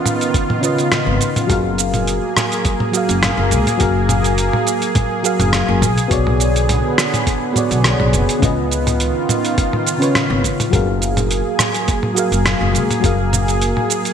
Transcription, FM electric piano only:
0.00 0.58 C#3 medium
0.00 0.59 C#4 medium
0.00 0.59 F4 medium
0.00 0.60 B4 medium
0.00 0.61 D#5 medium
0.60 1.45 C#3 medium
0.60 1.46 C#4 medium
0.60 1.46 F4 medium
0.60 1.47 B4 medium
0.66 1.48 D#5 medium
1.47 2.89 F#3 medium
1.47 2.90 F#4 medium
1.47 2.91 G#4 medium
1.51 2.91 A#4 medium
1.51 2.92 F5 medium
2.92 3.76 F#3 medium
2.92 3.77 F#4 medium
2.92 3.78 G#4 medium
2.96 3.78 A#4 medium
2.96 3.79 F5 medium
3.78 5.20 F#3 medium
3.78 5.21 F#4 medium
3.78 5.21 G#4 medium
3.82 5.22 A#4 medium
3.82 5.23 F5 medium
5.23 5.80 F#3 medium
5.23 5.80 F#4 medium
5.23 5.81 G#4 medium
5.23 5.81 A#4 medium
5.23 5.81 F5 medium
6.08 7.51 B3 medium
6.08 7.51 F#4 medium
6.08 7.52 G#4 medium
6.08 7.53 C#5 medium
6.14 7.53 D5 medium
7.53 8.37 B3 medium
7.53 8.38 F#4 medium
7.53 8.39 G#4 medium
7.57 8.40 C#5 medium
7.57 8.40 D5 medium
8.39 9.82 C#3 medium
8.39 9.82 C#4 medium
8.39 9.83 F4 medium
8.43 9.84 B4 medium
8.43 9.84 D#5 medium
9.98 10.68 C#3 medium
9.98 10.68 C#4 medium
9.98 10.69 F4 medium
9.98 10.70 B4 medium
10.04 10.70 C#5 medium
10.70 12.12 F#3 medium
10.70 12.13 F#4 medium
10.70 12.14 G#4 medium
10.74 12.15 A#4 medium
10.74 12.15 F5 medium
12.14 12.99 F#3 medium
12.14 12.99 F#4 medium
12.14 13.00 G#4 medium
12.18 13.01 A#4 medium
12.18 13.01 F5 medium
13.00 14.13 F#3 medium
13.00 14.13 F#4 medium
13.00 14.13 G#4 medium
13.04 14.13 A#4 medium
13.04 14.13 F5 medium

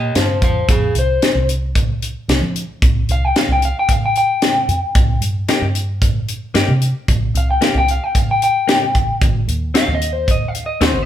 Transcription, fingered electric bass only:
0.00 0.13 A#2 medium
0.16 0.39 G2 medium
0.42 0.66 F2 medium
0.68 0.91 F2 loud
0.95 1.18 C2 medium
1.35 2.14 C2 medium
2.28 2.40 C2 medium
2.41 2.64 F3 medium
2.82 3.05 C2 medium
3.09 3.31 C2 medium
3.48 3.71 C2 medium
4.68 4.80 F2 medium
4.95 5.18 C2 loud
5.21 5.44 G2 medium
5.62 6.41 G2 medium
6.55 6.66 G2 medium
6.68 6.91 C3 medium
7.09 7.31 A#1 medium
7.34 7.57 C2 medium
7.75 7.98 C2 medium
8.95 9.06 A1 medium
9.22 9.44 G#1 loud
9.47 9.70 D#2 medium
9.88 10.67 D#2 medium
10.81 10.92 D#2 medium
10.94 11.06 G#1 medium

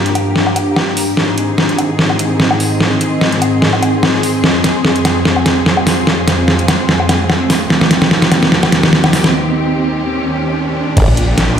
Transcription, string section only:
0.00 1.14 G2 medium
0.00 1.14 F3 medium
0.00 1.14 A#3 medium
0.00 1.14 G4 medium
1.17 4.41 G#2 medium
1.17 4.41 D#3 medium
1.17 10.93 C4 medium
1.17 7.66 G#4 medium
4.44 7.67 F2 medium
4.44 7.67 F3 medium
7.70 10.94 D#2 medium
7.70 10.94 D#3 medium
7.70 10.94 G4 medium
10.97 11.60 A#3 medium
10.97 11.60 D4 medium
10.97 11.60 G4 medium

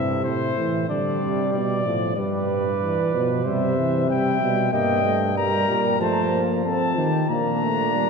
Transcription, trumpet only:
0.00 0.21 E5 medium
0.24 0.88 C5 medium
0.89 1.52 D5 medium
1.53 2.15 D5 medium
2.16 3.28 D5 medium
3.45 4.08 E5 medium
4.10 4.72 G5 medium
4.73 5.36 G5 medium
5.38 6.00 A#5 medium
6.01 6.42 A5 medium
6.65 7.26 A5 medium
7.30 8.10 A#5 medium

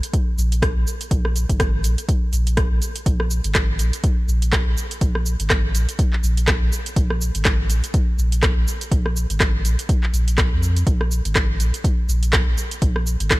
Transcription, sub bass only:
0.38 0.72 A#1 loud
0.76 0.85 A#1 medium
1.11 1.45 A#1 loud
1.49 1.86 G#1 medium
1.84 1.96 A#1 medium
2.33 2.67 A#1 loud
2.71 2.80 A#1 medium
3.06 3.41 A#1 loud
3.44 3.81 G#1 medium
3.79 3.91 A#1 medium
4.28 4.62 A#1 loud
4.67 4.75 A#1 medium
5.01 5.36 A#1 loud
5.40 5.76 G#1 medium
5.75 5.86 A#1 medium
6.23 6.58 A#1 loud
6.62 6.70 A#1 medium
6.96 7.31 A#1 loud
7.35 7.71 G#1 medium
7.70 7.81 A#1 medium
8.18 8.53 A#1 loud
8.57 8.65 A#1 medium
8.92 9.26 A#1 loud
9.30 9.66 G#1 medium
9.65 9.76 A#1 medium
10.13 10.53 A#1 loud
10.52 10.84 F2 medium
10.87 11.21 A#1 loud
11.25 11.62 G#1 medium
11.60 11.71 A#1 medium
12.09 12.43 A#1 loud
12.47 12.56 A#1 medium
12.82 13.16 A#1 loud
13.20 13.40 G#1 medium

